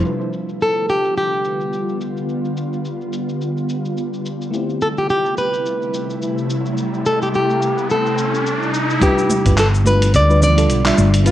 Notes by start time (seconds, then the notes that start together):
0.01 D3 G3 B3 D4 F4, shaker
0.06 F4 B4
0.21 shaker
0.33 shaker
0.49 shaker
0.61 A4, shaker
0.77 shaker
0.89 G4, shaker
1.05 shaker
1.17 G4, shaker
1.33 shaker
1.45 shaker
1.61 shaker
1.73 shaker
1.89 shaker
2.01 shaker
2.17 shaker
2.29 shaker
2.45 shaker
2.57 shaker
2.73 shaker
2.85 shaker
3.01 shaker
3.13 shaker
3.29 shaker
3.41 shaker
3.57 shaker
3.69 shaker
3.85 shaker
3.97 shaker
4.14 shaker
4.26 shaker
4.41 shaker
4.51 C3 A3 E4 G4, riser, shaker
4.55 C4
4.70 shaker
4.81 A4, shaker
4.98 G4, shaker
5.10 G4, shaker
5.26 shaker
5.38 B4, shaker
5.54 shaker
5.66 shaker
5.82 shaker
5.94 shaker
6.10 shaker
6.22 shaker
6.38 shaker
6.50 shaker
6.66 shaker
6.78 shaker
6.94 shaker
7.06 A4, shaker
7.22 G4, shaker
7.34 G4, shaker
7.50 shaker
7.62 shaker
7.78 shaker
7.90 A4, shaker
8.06 shaker
8.18 shaker
8.35 shaker
8.47 shaker
8.63 shaker
8.74 shaker
8.90 shaker
9.00 D3 G3 B3 D4 F4 G4 B4, kick, closed hi-hat, shaker
9.19 shaker
9.30 high conga, shaker
9.45 G1 G3 D4 F4 B4, kick, closed hi-hat, shaker
9.58 A4, clap, closed hi-hat, shaker
9.74 shaker
9.84 G3 D4 F4 B4, high conga, shaker
10.02 closed hi-hat, shaker
10.14 D2 D5, closed hi-hat, shaker
10.28 G3 D4 F4 B4, shaker
10.42 D5, low conga, shaker
10.55 G3 D4 F4 A4, closed hi-hat, shaker
10.70 B1, closed hi-hat, shaker
10.84 G3 D4 F4 E5, clap, shaker
10.98 G1, high conga, shaker
11.14 closed hi-hat, shaker
11.24 G3 D4 F4 G4 B4, closed hi-hat, shaker